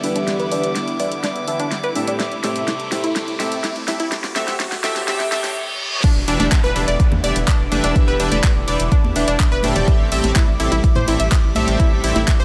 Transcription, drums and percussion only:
0.04 open hi-hat
0.16 closed hi-hat
0.28 snare, closed hi-hat
0.40 closed hi-hat
0.52 open hi-hat
0.64 closed hi-hat
0.76 snare, closed hi-hat
0.88 closed hi-hat
1.00 open hi-hat
1.12 closed hi-hat
1.24 snare, closed hi-hat
1.36 closed hi-hat
1.48 open hi-hat
1.60 closed hi-hat
1.72 snare, closed hi-hat
1.84 closed hi-hat
1.95 open hi-hat
2.08 closed hi-hat
2.20 snare, closed hi-hat
2.32 closed hi-hat
2.44 snare, open hi-hat
2.56 closed hi-hat
2.68 snare, closed hi-hat
2.80 closed hi-hat
2.92 snare, open hi-hat
3.04 closed hi-hat
3.16 snare, closed hi-hat
3.28 closed hi-hat
3.40 snare, open hi-hat
3.52 closed hi-hat
3.64 snare, closed hi-hat
3.76 closed hi-hat
3.88 snare, open hi-hat
4.00 closed hi-hat
4.12 snare, closed hi-hat
4.24 snare, closed hi-hat
4.36 snare, open hi-hat
4.48 snare, closed hi-hat
4.60 snare, closed hi-hat
4.72 snare, closed hi-hat
4.84 snare, open hi-hat
4.96 snare, closed hi-hat
5.08 snare, closed hi-hat
5.20 snare, closed hi-hat
5.32 snare, open hi-hat
5.44 snare, closed hi-hat
6.04 kick, closed hi-hat, crash
6.28 open hi-hat, ride
6.40 closed hi-hat, high conga
6.52 kick, clap, closed hi-hat
6.76 open hi-hat, ride
6.88 closed hi-hat
7.00 kick, closed hi-hat
7.12 high conga, low conga
7.24 open hi-hat, ride
7.36 closed hi-hat
7.48 kick, clap, closed hi-hat
7.72 open hi-hat, ride, high conga
7.84 closed hi-hat
7.96 kick, closed hi-hat
8.20 open hi-hat, ride
8.32 closed hi-hat, high conga
8.44 kick, clap, closed hi-hat
8.68 open hi-hat, ride
8.80 closed hi-hat
8.92 kick, closed hi-hat
9.04 high conga
9.16 open hi-hat, ride
9.28 closed hi-hat
9.40 kick, clap, closed hi-hat
9.63 open hi-hat, ride, high conga
9.76 closed hi-hat, low conga
9.88 kick, closed hi-hat
10.12 open hi-hat, ride
10.23 closed hi-hat, high conga
10.36 kick, clap, closed hi-hat
10.60 open hi-hat, ride
10.72 closed hi-hat
10.84 kick, closed hi-hat
10.95 high conga, low conga
11.08 open hi-hat, ride
11.20 closed hi-hat
11.32 kick, clap, closed hi-hat
11.55 open hi-hat, ride, high conga
11.68 closed hi-hat
11.80 kick, closed hi-hat
12.04 open hi-hat, ride
12.16 closed hi-hat, high conga
12.28 kick, clap, closed hi-hat

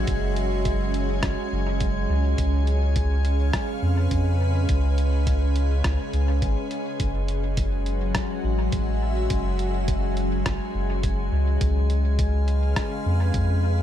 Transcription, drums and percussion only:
0.07 kick, closed hi-hat
0.36 closed hi-hat
0.65 kick, closed hi-hat
0.94 closed hi-hat
1.23 kick, cross-stick, closed hi-hat
1.80 kick, closed hi-hat
2.38 kick, closed hi-hat
2.67 closed hi-hat
2.96 kick, closed hi-hat
3.25 closed hi-hat
3.53 kick, cross-stick, closed hi-hat
4.11 kick, closed hi-hat
4.69 kick, closed hi-hat
4.98 closed hi-hat
5.27 kick, closed hi-hat
5.56 closed hi-hat
5.84 kick, cross-stick, closed hi-hat
6.13 closed hi-hat
6.42 kick, closed hi-hat
6.71 closed hi-hat
7.00 kick, closed hi-hat
7.28 closed hi-hat
7.57 kick, closed hi-hat
7.86 closed hi-hat
8.15 kick, cross-stick, closed hi-hat
8.72 kick, closed hi-hat
9.30 kick, closed hi-hat
9.59 closed hi-hat
9.88 kick, closed hi-hat
10.17 closed hi-hat
10.46 kick, cross-stick, closed hi-hat
11.03 kick, closed hi-hat
11.61 kick, closed hi-hat
11.90 closed hi-hat
12.19 kick, closed hi-hat
12.48 closed hi-hat
12.76 kick, cross-stick, closed hi-hat
13.34 kick, closed hi-hat

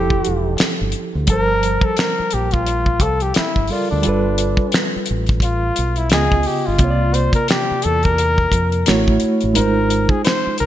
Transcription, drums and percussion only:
0.10 kick
0.25 closed hi-hat
0.58 finger snap, snare, closed hi-hat
0.92 closed hi-hat
1.27 kick, closed hi-hat
1.63 closed hi-hat
1.81 kick
1.97 finger snap, snare, closed hi-hat
2.31 closed hi-hat
2.51 kick, closed hi-hat
2.67 closed hi-hat
2.86 kick
3.00 kick, closed hi-hat
3.20 closed hi-hat
3.34 finger snap, snare, closed hi-hat
3.56 kick
3.67 open hi-hat
4.03 closed hi-hat
4.38 closed hi-hat
4.57 kick
4.72 finger snap, snare, closed hi-hat
5.06 closed hi-hat
5.27 kick, closed hi-hat
5.40 kick, closed hi-hat
5.76 closed hi-hat
5.96 closed hi-hat
6.10 finger snap, snare, closed hi-hat
6.32 kick
6.43 open hi-hat
6.79 kick, closed hi-hat
7.14 closed hi-hat
7.33 kick, closed hi-hat
7.48 finger snap, snare, closed hi-hat
7.82 closed hi-hat
8.03 kick, closed hi-hat
8.18 closed hi-hat
8.38 kick
8.52 kick, closed hi-hat
8.72 closed hi-hat
8.86 finger snap, snare, closed hi-hat
9.08 kick
9.20 closed hi-hat
9.41 closed hi-hat
9.55 closed hi-hat
9.90 closed hi-hat
10.09 kick
10.25 finger snap, snare, closed hi-hat
10.58 closed hi-hat

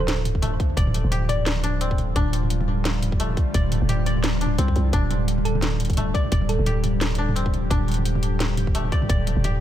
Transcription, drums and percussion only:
0.00 mid tom
0.08 snare, closed hi-hat
0.25 closed hi-hat, mid tom
0.35 kick
0.43 closed hi-hat, mid tom
0.60 kick, closed hi-hat
0.70 mid tom
0.77 kick, closed hi-hat
0.87 mid tom
0.94 closed hi-hat
1.12 closed hi-hat, mid tom
1.29 closed hi-hat, mid tom
1.46 snare, closed hi-hat
1.56 mid tom
1.64 closed hi-hat
1.81 closed hi-hat
1.91 kick
1.98 closed hi-hat, mid tom
2.16 kick, closed hi-hat, mid tom
2.33 closed hi-hat
2.43 mid tom
2.50 closed hi-hat
2.61 mid tom
2.85 snare, closed hi-hat, mid tom
3.03 closed hi-hat, mid tom
3.12 kick
3.20 closed hi-hat
3.30 mid tom
3.37 kick, closed hi-hat
3.54 kick, closed hi-hat
3.72 closed hi-hat, mid tom
3.89 closed hi-hat, mid tom
4.06 closed hi-hat
4.16 mid tom
4.24 snare, closed hi-hat
4.34 mid tom
4.37 closed hi-hat, mid tom
4.41 mid tom
4.46 mid tom
4.58 closed hi-hat, mid tom
4.68 kick
4.76 closed hi-hat, mid tom
4.93 kick, closed hi-hat, mid tom
5.11 closed hi-hat, mid tom
5.28 closed hi-hat
5.38 mid tom
5.45 closed hi-hat
5.55 mid tom
5.62 snare, closed hi-hat
5.80 closed hi-hat, mid tom
5.85 closed hi-hat
5.90 kick, closed hi-hat
5.93 closed hi-hat
5.97 closed hi-hat, mid tom
6.15 kick, closed hi-hat
6.24 mid tom
6.32 kick, closed hi-hat
6.41 mid tom
6.49 closed hi-hat
6.66 closed hi-hat, mid tom
6.84 closed hi-hat, mid tom
7.01 snare, closed hi-hat
7.11 closed hi-hat, mid tom
7.29 mid tom
7.36 closed hi-hat
7.46 kick
7.54 closed hi-hat, mid tom
7.71 kick, closed hi-hat, mid tom
7.88 closed hi-hat
7.92 closed hi-hat
7.94 closed hi-hat
7.98 mid tom
8.05 closed hi-hat
8.15 mid tom
8.23 closed hi-hat
8.40 snare, closed hi-hat, mid tom
8.57 closed hi-hat, mid tom
8.67 kick
8.75 closed hi-hat
8.85 mid tom
8.92 kick, closed hi-hat
9.02 mid tom
9.10 kick, closed hi-hat
9.27 closed hi-hat, mid tom
9.44 closed hi-hat, mid tom

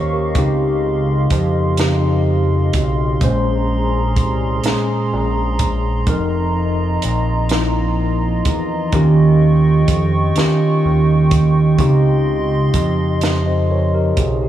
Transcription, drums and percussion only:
0.35 kick, closed hi-hat
1.30 kick, closed hi-hat
1.77 snare, closed hi-hat
2.73 kick, closed hi-hat
3.21 kick, closed hi-hat
4.16 kick, closed hi-hat
4.64 snare, closed hi-hat
5.59 kick, closed hi-hat
6.07 kick, closed hi-hat
7.02 closed hi-hat
7.49 snare, closed hi-hat
8.45 kick, closed hi-hat
8.92 kick, closed hi-hat
9.88 kick, closed hi-hat
10.36 snare, closed hi-hat
11.31 kick, closed hi-hat
11.79 kick, closed hi-hat
12.74 kick, closed hi-hat
13.21 snare, closed hi-hat
14.17 kick, closed hi-hat

